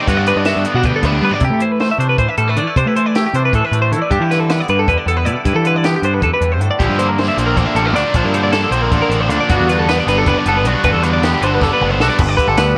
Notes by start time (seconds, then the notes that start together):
0.07 G2 D3 G3 B3 D4 F#4 B4, kick, closed hi-hat
0.17 D5
0.26 D4 B4, closed hi-hat
0.36 G2 D5
0.45 F#4 E5, snare, closed hi-hat
0.56 G2
0.64 B3 D5, closed hi-hat
0.74 B2 D4 F#4
0.83 D2 G4, kick, closed hi-hat
0.96 A4
1.02 D2 G2 D3 G3 B3 D4 B4, kick, closed hi-hat
1.12 G4, high tom
1.21 G2 D3 G3 B3 D4 B4
1.31 D4 D5, floor tom
1.40 C3 E4, kick, closed hi-hat
1.45 G4
1.50 A3
1.59 E3 C5, closed hi-hat
1.72 B4
1.80 A3 C5, snare, closed hi-hat
1.92 E5
1.98 C3 D4 C5, closed hi-hat
2.09 B4
2.17 A2 E3 C5, kick, closed hi-hat
2.29 E5
2.37 A2 G3 A4, closed hi-hat
2.47 A3 B4
2.56 E3 D4 D5, closed hi-hat
2.67 E4
2.76 C3 D4 C5, kick, closed hi-hat
2.86 A3 E4 B4
2.96 E3 C5, closed hi-hat
3.06 D5
3.15 A3 G4, snare, closed hi-hat
3.26 G4
3.34 C3 D4 C5, closed hi-hat
3.45 B4
3.53 A2 E3 A4, kick, closed hi-hat
3.65 B4
3.71 A2 A3, closed hi-hat
3.82 C5
3.92 E3 E4 A4, closed hi-hat
4.02 D5
4.10 G2 D4 G4, kick, closed hi-hat
4.20 E3 E4
4.30 D3 B4, snare, closed hi-hat
4.40 A4
4.49 B3 B4, snare, closed hi-hat
4.60 D5
4.68 G2 D4 B4, closed hi-hat
4.79 A4
4.87 E2 D3 B4, kick, closed hi-hat
4.98 D5
5.06 E2 B3 A4, closed hi-hat
5.17 B4
5.25 B2 E4 D5, closed hi-hat
5.45 G2 E4 B4, kick, closed hi-hat
5.55 E3 A4
5.64 D3 B4, closed hi-hat
5.76 D5
5.83 B3 G4, snare, closed hi-hat
5.96 G4
6.03 G2 D4 C5, closed hi-hat
6.14 B4
6.21 E2 F#2 A4, kick, closed hi-hat
6.34 B4
6.41 E2 G2, closed hi-hat
6.52 C5
6.60 G2 A2 A4, closed hi-hat
6.71 D5
6.79 A#1 A#2 D3 F3 A#3 D4 E4 G4, kick, closed hi-hat
6.88 G2
6.99 D3 F3 A#3 D4 C5, closed hi-hat
7.09 A#4
7.18 D3 F3 A#3 D4 C5, snare, closed hi-hat
7.28 E5
7.37 A#1 A#2 D3 F3 A#3 C4 D4 C5, closed hi-hat
7.46 A#4
7.55 A1 D3 F3 A#3 D4 C5, kick, closed hi-hat
7.66 E5
7.75 A1 A#2 D3 F3 G3 A#3 D4 A4, closed hi-hat
7.85 A3 A#4
7.94 D2 D3 F3 A#3 D4 D5, snare, closed hi-hat
8.14 A#1 A#2 D3 F3 A#3 D4 C5, kick, closed hi-hat
8.24 G2 E4 A#4
8.33 D3 F3 A#3 D4 C5, closed hi-hat
8.44 D5
8.52 D3 F3 A#3 A4, snare, closed hi-hat
8.57 D4
8.64 A4
8.71 A#1 A#2 D3 F3 A#3 C4 D4 C5, closed hi-hat
8.82 A#4
8.91 A1 D3 F3 A#3 D4 A4, kick, closed hi-hat
9.02 A#4
9.10 A1 A#2 D3 F3 A#3 D4, closed hi-hat
9.21 C5
9.29 D2 D3 F3 A#3 D4 A4, closed hi-hat
9.41 D5
9.49 G1 G2 D3 G3 B3 D4 F#4, kick, closed hi-hat
9.60 E2
9.69 D3 G3 B3 D4 B4, snare, closed hi-hat
9.79 A4
9.87 D3 G3 B3 D4 B4, snare, closed hi-hat
10.00 D5
10.07 G1 G2 D3 G3 B3 D4 B4, snare, closed hi-hat
10.17 D4 A4
10.26 F#1 D3 G3 B3 D4 B4, kick, closed hi-hat
10.38 D5
10.46 F#1 G2 D3 G3 B3 D4 A4, closed hi-hat
10.57 B4
10.65 B1 D3 G3 B3 D4 F#4 D5, closed hi-hat
10.84 G1 G2 D3 G3 B3 D4 F#4 B4, kick, closed hi-hat
10.93 E2 A4
11.03 D3 G3 B3 D4 B4, closed hi-hat
11.13 D5
11.22 D3 G3 B3 D4 G4, snare, closed hi-hat
11.34 G4
11.41 G1 G2 D3 G3 B3 D4 C5, closed hi-hat
11.55 B4
11.61 F#1 D3 G3 B3 D4 A4, kick, snare
11.73 B4
11.80 F#1 G2 D3 G3 B3 D4, mid tom
11.90 C5
12.00 B1 D3 G3 B3 D4 F#4 A4, snare
12.09 D5
12.18 G1 G2 B4, kick, crash
12.29 D5
12.37 D3 B4, kick, closed hi-hat
12.48 G1 A4
12.57 D2 B3 B4, snare, closed hi-hat